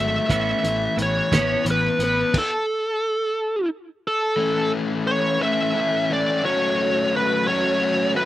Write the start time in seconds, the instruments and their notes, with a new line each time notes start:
Already playing: fingered electric bass G#1, overdriven electric guitar F#3 A3
0.00 lead electric guitar E5
0.28 fingered electric bass A1, overdriven electric guitar E3, clean electric guitar E3 B3 C#4, lead electric guitar E5, kick, closed hi-hat
0.63 fingered electric bass A1, clean electric guitar E3 B3, overdriven electric guitar E3, closed hi-hat
0.97 fingered electric bass A1, clean electric guitar E3 B3, overdriven electric guitar E3, closed hi-hat
1.02 lead electric guitar C#5
1.32 fingered electric bass A1, clean electric guitar E3 B3 C#4, overdriven electric guitar B3, kick, snare, closed hi-hat
1.65 fingered electric bass A1, overdriven electric guitar E3, clean electric guitar E3 B3, closed hi-hat
1.71 lead electric guitar B4
1.99 fingered electric bass A1, overdriven electric guitar B3, closed hi-hat
2.04 lead electric guitar B4
2.34 kick, crash
2.38 lead electric guitar A4
4.07 lead electric guitar A4
4.36 overdriven electric guitar E3 A3 C#4
4.41 string machine A3 A4 B4 E5
5.07 lead electric guitar C#5
5.39 overdriven electric guitar E3 A3 C#4, lead electric guitar E5
5.74 overdriven electric guitar E3 A3 C#4
6.10 overdriven electric guitar E3 A3 C#4, lead electric guitar D5
6.43 string machine F#3 F#4, overdriven electric guitar A3 C#4 F#4, lead electric guitar C#5
7.16 lead electric guitar B4
7.48 overdriven electric guitar A3 C#4 F#4, lead electric guitar C#5
7.82 overdriven electric guitar A3 C#4 F#4
8.15 overdriven electric guitar A3 C#4 F#4, lead electric guitar B4